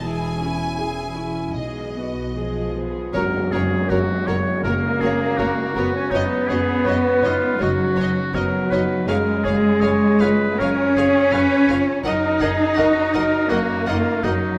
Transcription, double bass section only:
0.00 1.53 E1 soft
1.58 2.92 B1 soft
3.14 3.22 F#1 medium
3.52 3.60 F#1 medium
3.90 3.98 F#1 medium
4.28 4.36 F#1 medium
4.65 4.73 F#1 medium
5.01 5.09 F#1 medium
5.39 5.47 F#1 medium
5.76 5.84 F#1 medium
6.13 6.21 F#1 medium
6.50 6.58 F#1 medium
6.87 6.95 F#1 medium
7.24 7.32 F#1 medium
7.61 7.69 F#1 medium
7.98 8.06 F#1 medium
8.35 8.43 F#1 medium
8.72 8.80 F#1 medium
9.07 9.15 F#1 medium
9.45 9.53 F#1 medium
9.81 9.89 F#1 medium
10.20 10.28 F#1 medium
10.60 10.68 F#1 medium
10.97 11.05 F#1 medium
11.33 11.41 F#1 medium
11.69 11.77 F#1 medium
12.06 12.14 F#1 medium
12.41 12.49 F#1 medium
12.78 12.86 F#1 medium
13.15 13.23 F#1 medium
13.52 13.60 F#1 medium
13.89 13.97 F#1 medium
14.25 14.33 F#1 medium

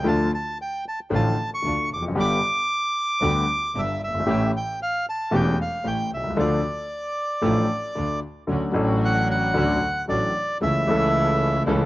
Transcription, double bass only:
0.06 0.28 D2 medium
1.11 1.33 A1 medium
1.65 1.86 D2 soft
1.90 2.16 F1 soft
2.16 2.39 G1 medium
3.21 3.44 D2 medium
3.75 3.97 G1 soft
4.01 4.27 G1 soft
4.28 4.50 A1 medium
5.33 5.55 E1 medium
5.85 6.07 A1 soft
6.12 6.37 C2 medium
6.37 6.60 D2 medium
7.44 7.66 A1 medium
7.97 8.19 D2 soft
8.49 8.72 D2 medium
8.76 9.51 A1 medium
9.56 9.78 D2 medium
10.09 10.31 A1 medium
10.61 10.83 C#2 medium
10.87 11.62 C#2 medium
11.66 11.86 C#2 medium

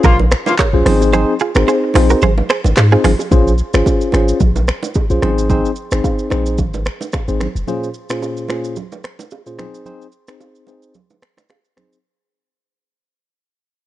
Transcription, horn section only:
0.04 0.16 C#3 medium
0.04 0.16 F3 medium
0.04 0.16 A#3 medium
0.04 0.16 F4 loud
0.47 0.54 C#3 medium
0.47 0.54 F3 medium
0.47 0.54 A#3 medium
0.47 0.54 F4 medium

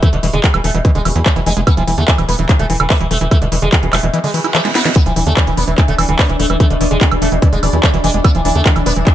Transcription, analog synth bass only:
0.13 0.20 E1 medium
0.23 0.30 E1 loud
0.33 0.40 E1 medium
0.54 0.61 E1 medium
0.64 0.71 E1 loud
0.75 0.82 E1 medium
0.95 1.02 E1 medium
1.05 1.12 E1 loud
1.16 1.23 E2 loud
1.36 1.43 F1 medium
1.46 1.53 F1 loud
1.57 1.64 F1 medium
1.77 1.84 E1 medium
1.88 1.95 E1 loud
1.98 2.05 E2 medium
2.18 2.25 E1 medium
2.29 2.36 E1 loud
2.39 2.46 E1 medium
2.59 2.66 E1 medium
2.70 2.77 E1 loud
2.80 2.87 E1 medium
3.01 3.08 E1 medium
3.11 3.18 E1 loud
3.21 3.28 E1 medium
3.42 3.49 E1 medium
3.52 3.59 E1 medium
3.62 3.69 E1 loud
3.83 3.90 E1 medium
3.93 4.00 E1 loud
4.03 4.10 E1 medium
5.06 5.13 E1 medium
5.16 5.23 E1 medium
5.27 5.34 E2 loud
5.47 5.54 E1 medium
5.57 5.64 E1 loud
5.68 5.75 E1 medium
5.88 5.95 E1 medium
5.98 6.06 E1 loud
6.09 6.16 E1 loud
6.29 6.36 E1 medium
6.40 6.47 E1 loud
6.50 6.57 E1 loud
6.70 6.77 E1 medium
6.81 6.88 E1 medium
6.91 6.98 E1 medium
7.11 7.19 E1 medium
7.22 7.29 E1 loud
7.32 7.39 E1 medium
7.53 7.60 E1 medium
7.63 7.70 E1 loud
7.73 7.80 E2 loud
7.94 8.01 F1 medium
8.04 8.11 F1 loud
8.14 8.21 F1 medium
8.35 8.42 E1 medium
8.45 8.52 E1 loud
8.55 8.62 E2 medium
8.76 8.83 E1 medium
8.86 8.93 E1 loud
8.96 9.03 E1 medium

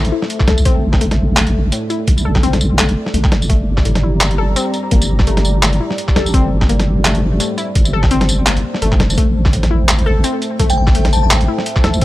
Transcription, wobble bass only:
0.00 0.11 A1 loud
0.48 0.64 C2 medium
0.66 1.71 A1 loud
2.08 2.95 A1 loud
3.14 3.33 A1 medium
3.32 3.48 G1 medium
3.50 4.55 G1 medium
4.92 5.80 G1 loud
6.16 6.32 A#1 medium
6.34 7.39 G1 loud
7.76 8.63 G1 loud
8.82 9.02 G1 medium
9.00 9.17 F1 medium
9.18 10.23 A1 loud
10.60 11.48 A1 loud
11.84 12.00 C2 medium
12.02 12.05 A1 loud

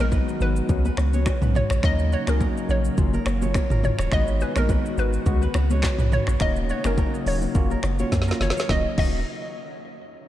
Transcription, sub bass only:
0.00 0.20 A#1 medium
0.41 0.62 G#1 loud
0.69 0.90 C#2 loud
0.98 1.30 C#2 medium
1.42 1.63 B1 medium
1.71 1.80 A#1 medium
1.84 2.16 D#2 loud
2.28 2.49 C#2 medium
2.69 2.90 A#1 medium
2.98 3.19 F#1 loud
3.26 3.59 F#1 medium
3.70 3.91 G#1 loud
3.99 4.09 D#1 loud
4.12 4.44 G#1 loud
4.56 4.77 A#1 medium
4.98 5.19 G#1 loud
5.26 5.47 C#2 loud
5.55 5.87 C#2 loud
5.99 6.20 B1 medium
6.28 6.37 A#1 medium
6.41 6.73 D#1 loud
6.85 7.06 F#1 medium
7.26 7.47 D#1 medium
7.55 7.76 F#1 loud
7.84 8.04 F#1 medium
8.12 8.33 F#2 loud
8.41 8.52 F#1 loud
8.69 8.86 D#1 loud
8.98 9.24 D#1 loud

